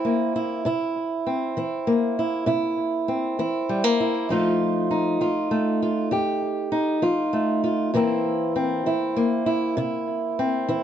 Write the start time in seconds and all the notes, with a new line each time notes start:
Already playing: E3 C4 E4
0.05 A#3
0.36 E4
0.65 C3 E4
1.26 C4
1.57 E3 E4
1.87 A#3
2.19 E4
2.46 C3 E4
3.08 C4
3.39 E3 E4
3.69 G3
3.84 A#3
4.00 E4
4.29 F2 F3 A3 D#4 F4
4.91 D#4
5.21 F3 F4
5.51 A3
5.82 F4
6.11 F2 G4
6.72 D#4
7.02 F3 F4
7.33 A3
7.64 F4
7.94 C3 E3 A#3 C4 E4
8.56 C4
8.86 E3 E4
9.16 A#3
9.46 E4
9.77 C3 E4
10.39 C4
10.69 E3 E4